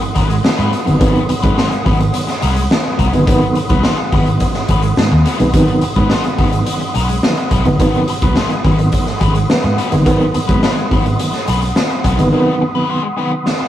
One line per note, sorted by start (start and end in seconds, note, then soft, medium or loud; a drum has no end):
0.00 13.68 F#5 medium
0.00 13.68 B5 medium
0.00 13.68 C6 medium
0.00 13.68 D#6 medium
0.00 muted overdriven electric guitar stroke soft
0.00 closed hi-hat soft
0.15 0.39 G#1 medium
0.15 0.22 F#3 soft
0.15 0.35 G#3 medium
0.15 0.23 B3 soft
0.15 0.29 C4 medium
0.15 0.28 F#4 medium
0.15 0.28 B4 medium
0.15 kick medium
0.15 closed hi-hat medium
0.29 muted overdriven electric guitar stroke soft
0.29 closed hi-hat medium
0.43 0.54 C3 medium
0.43 0.54 D#3 medium
0.43 0.54 F#3 medium
0.43 0.54 B3 medium
0.43 muted overdriven electric guitar stroke soft
0.43 snare loud
0.57 0.70 G#2 loud
0.57 0.65 F#3 soft
0.57 0.70 G#3 medium
0.57 0.65 B3 soft
0.57 0.71 C4 medium
0.57 0.71 F#4 medium
0.57 0.71 B4 medium
0.57 closed hi-hat soft
0.71 0.79 F#3 soft
0.71 0.80 B3 soft
0.71 muted overdriven electric guitar stroke soft
0.71 closed hi-hat medium
0.85 0.99 G1 medium
0.85 0.97 C3 loud
0.85 0.97 D#3 loud
0.85 0.97 F#3 loud
0.85 0.97 B3 loud
0.85 muted overdriven electric guitar stroke soft
0.85 closed hi-hat medium
1.00 1.12 G#1 loud
1.00 1.31 C3 loud
1.00 1.31 D#3 medium
1.00 1.31 F#3 loud
1.00 1.20 G#3 medium
1.00 1.31 B3 loud
1.00 1.20 C4 loud
1.00 1.21 F#4 loud
1.00 1.21 B4 medium
1.00 kick loud
1.00 closed hi-hat medium
1.15 closed hi-hat soft
1.29 muted overdriven electric guitar stroke medium
1.29 muted fingered electric bass stroke soft
1.29 closed hi-hat medium
1.42 1.55 G#2 medium
1.42 1.74 C3 medium
1.42 1.74 D#3 medium
1.42 1.74 F#3 medium
1.42 1.74 G#3 medium
1.42 1.55 G#3 medium
1.42 1.56 C4 medium
1.42 1.56 F#4 medium
1.42 1.56 B4 medium
1.42 kick loud
1.42 closed hi-hat medium
1.56 1.73 G#3 loud
1.56 1.70 C4 medium
1.56 1.70 F#4 loud
1.56 1.70 C5 loud
1.56 snare medium
1.70 muted overdriven electric guitar stroke soft
1.70 closed hi-hat soft
1.84 2.09 G#1 loud
1.84 2.26 C3 medium
1.84 2.26 D#3 medium
1.84 2.26 F#3 medium
1.84 1.98 G#3 medium
1.84 2.26 B3 medium
1.84 1.98 C4 medium
1.84 1.99 F#4 medium
1.84 1.98 B4 medium
1.84 kick medium
1.84 open hi-hat medium
1.99 muted overdriven electric guitar stroke soft
1.99 closed hi-hat medium
2.13 muted overdriven electric guitar stroke soft
2.13 closed hi-hat loud
2.27 muted overdriven electric guitar stroke soft
2.27 snare soft
2.27 closed hi-hat soft
2.41 2.65 C2 loud
2.41 2.49 F#3 soft
2.41 2.62 G#3 medium
2.41 2.49 B3 soft
2.41 2.55 C4 medium
2.41 2.55 F#4 medium
2.41 2.54 B4 medium
2.41 closed hi-hat medium
2.55 muted overdriven electric guitar stroke soft
2.55 closed hi-hat medium
2.70 2.80 C3 medium
2.70 2.81 D#3 medium
2.70 2.81 F#3 medium
2.70 2.81 B3 medium
2.70 snare loud
2.84 2.92 F#3 soft
2.84 2.92 B3 soft
2.84 muted overdriven electric guitar stroke soft
2.98 3.10 C2 medium
2.98 3.06 F#3 soft
2.98 3.18 G#3 medium
2.98 3.06 B3 soft
2.98 3.13 C4 medium
2.98 3.12 F#4 medium
2.98 3.12 B4 medium
2.98 kick medium
2.98 closed hi-hat medium
3.13 3.25 G1 medium
3.13 3.23 C3 loud
3.13 3.23 D#3 medium
3.13 3.23 F#3 loud
3.13 3.24 B3 loud
3.13 muted overdriven electric guitar stroke soft
3.13 closed hi-hat medium
3.26 3.39 G#1 loud
3.26 3.58 C3 loud
3.26 3.58 D#3 loud
3.26 3.58 F#3 loud
3.26 3.43 G#3 medium
3.26 3.58 B3 loud
3.26 3.44 C4 medium
3.26 3.44 F#4 medium
3.26 3.44 B4 medium
3.26 kick loud
3.26 closed hi-hat medium
3.42 closed hi-hat soft
3.55 muted overdriven electric guitar stroke soft
3.55 closed hi-hat medium
3.69 3.81 C2 medium
3.69 4.00 C3 medium
3.69 4.00 D#3 medium
3.69 4.01 F#3 medium
3.69 3.82 G#3 medium
3.69 4.00 B3 medium
3.69 3.83 C4 medium
3.69 3.83 F#4 medium
3.69 3.83 B4 medium
3.69 kick loud
3.69 closed hi-hat soft
3.83 4.00 G#3 medium
3.83 3.98 C4 medium
3.83 3.98 F#4 loud
3.83 3.98 C5 medium
3.83 snare medium
3.98 muted overdriven electric guitar stroke soft
4.12 4.35 G#1 medium
4.12 4.53 C3 medium
4.12 4.53 D#3 medium
4.12 4.53 F#3 medium
4.12 4.25 G#3 medium
4.12 4.53 B3 loud
4.12 4.25 C4 medium
4.12 4.26 F#4 medium
4.12 4.26 B4 medium
4.12 kick medium
4.12 open hi-hat medium
4.27 muted overdriven electric guitar stroke medium
4.27 closed hi-hat medium
4.40 muted overdriven electric guitar stroke soft
4.40 kick medium
4.40 closed hi-hat medium
4.54 muted overdriven electric guitar stroke soft
4.54 snare soft
4.54 closed hi-hat soft
4.68 4.92 G#1 medium
4.68 4.76 F#3 soft
4.68 4.85 G#3 medium
4.68 4.76 B3 soft
4.68 4.83 C4 medium
4.68 4.83 F#4 medium
4.68 4.82 B4 medium
4.68 kick medium
4.68 closed hi-hat medium
4.82 muted overdriven electric guitar stroke soft
4.82 closed hi-hat medium
4.97 5.09 G#2 medium
4.97 5.07 C3 medium
4.97 5.07 D#3 medium
4.97 5.08 F#3 medium
4.97 5.08 B3 medium
4.97 snare loud
5.11 5.23 D#2 medium
5.11 muted overdriven electric guitar stroke medium
5.11 closed hi-hat soft
5.25 5.32 F#3 soft
5.25 5.42 G#3 medium
5.25 5.32 B3 soft
5.25 5.39 C4 medium
5.25 5.39 F#4 medium
5.25 5.38 B4 medium
5.25 closed hi-hat medium
5.39 5.51 B1 medium
5.39 5.50 C3 loud
5.39 5.50 D#3 loud
5.39 5.50 F#3 loud
5.39 5.50 B3 loud
5.39 muted overdriven electric guitar stroke soft
5.39 closed hi-hat medium
5.53 5.65 G#1 loud
5.53 5.84 C3 loud
5.53 5.84 D#3 loud
5.53 5.84 F#3 loud
5.53 5.70 G#3 medium
5.53 5.85 B3 loud
5.53 5.70 C4 medium
5.53 5.70 F#4 medium
5.53 5.71 B4 medium
5.53 kick loud
5.53 closed hi-hat loud
5.68 closed hi-hat soft
5.81 muted overdriven electric guitar stroke soft
5.81 muted fingered electric bass stroke soft
5.81 closed hi-hat medium
5.96 6.08 G#2 loud
5.96 6.27 C3 medium
5.96 6.27 D#3 medium
5.96 6.27 F#3 medium
5.96 6.08 G#3 medium
5.96 6.27 B3 medium
5.96 6.09 C4 medium
5.96 6.09 F#4 medium
5.96 6.09 B4 medium
5.96 kick loud
5.96 closed hi-hat soft
6.10 6.26 G#3 medium
6.10 6.25 C4 medium
6.10 6.24 F#4 medium
6.10 6.24 C5 medium
6.10 snare medium
6.24 muted overdriven electric guitar stroke soft
6.24 closed hi-hat soft
6.37 6.62 G#1 medium
6.37 6.79 C3 medium
6.37 6.79 D#3 medium
6.37 6.79 F#3 medium
6.37 6.51 G#3 medium
6.37 6.80 B3 medium
6.37 6.51 C4 medium
6.37 6.51 F#4 medium
6.37 6.51 B4 medium
6.37 kick medium
6.37 open hi-hat medium
6.52 muted overdriven electric guitar stroke soft
6.52 closed hi-hat medium
6.66 muted overdriven electric guitar stroke soft
6.66 closed hi-hat medium
6.80 muted overdriven electric guitar stroke soft
6.80 closed hi-hat soft
6.94 7.18 B1 medium
6.94 7.02 F#3 soft
6.94 7.14 G#3 medium
6.94 7.02 B3 soft
6.94 7.09 C4 medium
6.94 7.08 F#4 medium
6.94 7.07 B4 medium
6.94 closed hi-hat medium
7.08 muted overdriven electric guitar stroke soft
7.08 closed hi-hat medium
7.23 7.33 C3 medium
7.23 7.33 D#3 medium
7.23 7.34 F#3 medium
7.23 7.34 B3 medium
7.23 snare loud
7.37 7.44 F#3 soft
7.37 7.45 B3 soft
7.37 muted overdriven electric guitar stroke medium
7.37 closed hi-hat soft
7.51 7.63 B1 medium
7.51 7.68 G#3 medium
7.51 7.66 C4 medium
7.51 7.65 F#4 medium
7.51 7.64 B4 medium
7.51 kick medium
7.51 closed hi-hat medium
7.65 7.77 G1 medium
7.65 7.76 C3 loud
7.65 7.76 D#3 loud
7.65 7.76 F#3 medium
7.65 7.76 B3 loud
7.65 muted overdriven electric guitar stroke medium
7.65 closed hi-hat medium
7.80 7.91 G#1 loud
7.80 8.10 C3 loud
7.80 8.10 D#3 loud
7.80 8.11 F#3 loud
7.80 8.00 G#3 medium
7.80 8.11 B3 loud
7.80 8.00 C4 medium
7.80 8.00 F#4 medium
7.80 8.01 B4 medium
7.80 kick loud
7.80 closed hi-hat medium
7.94 closed hi-hat soft
8.08 muted overdriven electric guitar stroke soft
8.08 closed hi-hat medium
8.22 8.34 C2 medium
8.22 8.53 C3 medium
8.22 8.53 D#3 medium
8.22 8.53 F#3 medium
8.22 8.36 G#3 medium
8.22 8.53 B3 medium
8.22 8.36 C4 medium
8.22 8.36 F#4 medium
8.22 8.35 B4 medium
8.22 kick loud
8.22 closed hi-hat medium
8.36 8.53 G#3 medium
8.36 8.51 C4 loud
8.36 8.50 F#4 medium
8.36 8.50 C5 loud
8.36 snare medium
8.50 muted overdriven electric guitar stroke soft
8.50 closed hi-hat soft
8.64 8.88 G#1 medium
8.64 9.05 C3 medium
8.64 9.05 D#3 medium
8.64 9.06 F#3 medium
8.64 8.77 G#3 medium
8.64 9.06 B3 medium
8.64 8.78 C4 medium
8.64 8.78 F#4 medium
8.64 8.78 B4 medium
8.64 kick medium
8.64 open hi-hat medium
8.79 muted overdriven electric guitar stroke soft
8.79 closed hi-hat medium
8.92 muted overdriven electric guitar stroke soft
8.92 kick medium
8.92 closed hi-hat medium
9.07 muted overdriven electric guitar stroke soft
9.07 snare soft
9.07 closed hi-hat soft
9.20 9.44 G#1 medium
9.20 9.28 F#3 soft
9.20 9.37 G#3 medium
9.20 9.28 B3 soft
9.20 9.35 C4 medium
9.20 9.34 F#4 medium
9.20 9.35 G#4 medium
9.20 9.34 B4 medium
9.20 kick medium
9.20 closed hi-hat medium
9.35 9.49 C5 medium
9.35 muted overdriven electric guitar stroke soft
9.35 closed hi-hat medium
9.49 9.59 C3 medium
9.49 9.60 D#3 medium
9.49 9.60 F#3 medium
9.49 9.60 B3 medium
9.49 9.76 B4 medium
9.49 snare loud
9.63 9.75 G#2 medium
9.63 9.71 F#3 soft
9.63 9.71 B3 soft
9.63 muted overdriven electric guitar stroke soft
9.63 closed hi-hat soft
9.78 9.94 G#3 medium
9.78 9.85 B3 soft
9.78 9.91 C4 medium
9.78 9.91 F#4 medium
9.78 9.90 B4 loud
9.78 closed hi-hat medium
9.92 10.06 G1 medium
9.92 10.02 C3 loud
9.92 10.02 D#3 loud
9.92 10.02 F#3 loud
9.92 10.02 B3 loud
9.92 muted overdriven electric guitar stroke soft
9.92 closed hi-hat soft
10.05 10.18 G#1 loud
10.05 10.37 C3 loud
10.05 10.37 D#3 loud
10.05 10.37 F#3 loud
10.05 10.22 G#3 medium
10.05 10.37 B3 loud
10.05 10.22 C4 medium
10.05 10.23 F#4 medium
10.05 10.23 B4 medium
10.05 kick loud
10.05 closed hi-hat medium
10.21 closed hi-hat soft
10.34 muted overdriven electric guitar stroke soft
10.34 muted fingered electric bass stroke medium
10.34 closed hi-hat medium
10.48 10.60 G#2 medium
10.48 10.79 C3 medium
10.48 10.79 D#3 medium
10.48 10.79 F#3 medium
10.48 10.62 G#3 medium
10.48 10.79 B3 medium
10.48 10.62 C4 medium
10.48 10.61 F#4 medium
10.48 10.61 B4 medium
10.48 kick loud
10.48 closed hi-hat soft
10.63 10.83 G#3 loud
10.63 10.77 C4 medium
10.63 10.76 F#4 medium
10.63 10.76 C5 loud
10.63 snare loud
10.77 muted overdriven electric guitar stroke soft
10.77 closed hi-hat soft
10.91 11.14 G#1 loud
10.91 11.32 C3 medium
10.91 11.32 D#3 medium
10.91 11.32 F#3 medium
10.91 11.04 G#3 medium
10.91 11.32 B3 medium
10.91 11.04 C4 medium
10.91 11.05 F#4 medium
10.91 11.05 B4 medium
10.91 kick medium
10.91 open hi-hat medium
11.06 muted overdriven electric guitar stroke soft
11.06 closed hi-hat medium
11.19 muted overdriven electric guitar stroke soft
11.19 closed hi-hat medium
11.33 snare soft
11.33 closed hi-hat soft
11.47 11.71 B1 medium
11.47 11.54 F#3 soft
11.47 11.61 G#3 medium
11.47 11.55 B3 soft
11.47 11.61 C4 medium
11.47 11.61 F#4 medium
11.47 11.61 B4 medium
11.47 closed hi-hat medium
11.62 muted overdriven electric guitar stroke soft
11.62 closed hi-hat medium
11.76 11.86 C3 medium
11.76 11.86 D#3 medium
11.76 11.86 F#3 medium
11.76 11.86 B3 medium
11.76 snare loud
11.90 11.97 F#3 soft
11.90 11.97 C4 soft
11.90 muted overdriven electric guitar stroke soft
11.90 closed hi-hat soft
12.04 12.16 B1 loud
12.04 12.11 F#3 soft
12.04 12.21 G#3 medium
12.04 12.11 B3 soft
12.04 12.19 C4 medium
12.04 12.18 F#4 medium
12.04 12.18 B4 medium
12.04 kick medium
12.04 closed hi-hat medium
12.18 12.30 G1 medium
12.18 12.28 C3 loud
12.18 12.29 D#3 loud
12.18 12.29 F#3 loud
12.18 12.29 B3 loud
12.18 muted overdriven electric guitar stroke soft
12.18 closed hi-hat medium
12.32 12.63 C3 loud
12.32 12.63 D#3 loud
12.32 12.63 F#3 medium
12.32 12.53 G#3 medium
12.32 12.63 B3 loud
12.32 12.53 C4 medium
12.32 12.53 F#4 medium
12.32 12.54 B4 medium
12.60 muted overdriven electric guitar stroke soft
12.75 13.06 C3 medium
12.75 13.06 D#3 medium
12.75 13.06 F#3 medium
12.75 12.88 G#3 medium
12.75 13.06 B3 loud
12.75 12.88 C4 medium
12.75 12.88 F#4 medium
12.75 12.88 B4 medium
12.89 13.06 G#3 medium
12.89 13.03 C4 medium
12.89 13.03 F#4 loud
12.89 13.03 C5 loud
13.03 muted overdriven electric guitar stroke soft
13.17 13.58 C3 medium
13.17 13.58 D#3 medium
13.17 13.58 F#3 medium
13.17 13.30 G#3 medium
13.17 13.58 B3 medium
13.17 13.30 C4 medium
13.17 13.31 F#4 medium
13.17 13.31 B4 medium
13.32 muted overdriven electric guitar stroke soft
13.46 muted overdriven electric guitar stroke soft
13.46 snare medium
13.60 muted overdriven electric guitar stroke soft